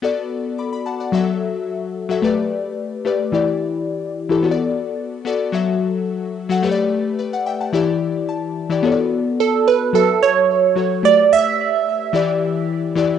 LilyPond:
<<
  \new Staff \with { instrumentName = "Synth pluck" } { \time 4/4 \key b \minor \tempo 4 = 109 r1 | r1 | r1 | r1 |
r4 a'8 b'8 a'8 cis''4. | d''8 e''2 r4. | }
  \new Staff \with { instrumentName = "Synth keys" } { \time 4/4 \key b \minor << { r4 <b'' d'''>16 b''16 <fis'' a''>16 <d'' fis''>8 r4. r16 | r1 | r1 | r4 <b' d''>16 <d'' fis''>16 <e'' g''>16 <fis'' a''>8 r8. a''4 |
r1 | r1 | } \\ { <b fis' a' d''>4~ <b fis' a' d''>16 r8. <fis fis' a' e''>4. r16 <fis fis' a' e''>16 | <a g' b' d''>4~ <a g' b' d''>16 r16 <a g' b' d''>8 <e e' g' d''>4. r16 <e e' g' a'>16 | <b fis' a' cis'' d''>4~ <b fis' a' cis'' d''>16 r16 <b fis' a' d''>8 <fis fis' a' e''>4. r16 <fis fis' a' fis''>16 | <a g' b' cis'' d''>4~ <a g' b' cis'' d''>16 r8. <e e' g' d''>4. r16 <e e' g' d''>16 |
<b fis' a' cis'' d''>4.~ <b fis' a' cis'' d''>16 r16 <fis fis' a' e''>4~ <fis fis' a' e''>16 r16 <fis fis' a' cis''>8 | <a g' b' d''>4.~ <a g' b' d''>16 r16 <e e' g' d''>4~ <e e' g' d''>16 r16 <e e' g' d''>8 | } >> }
>>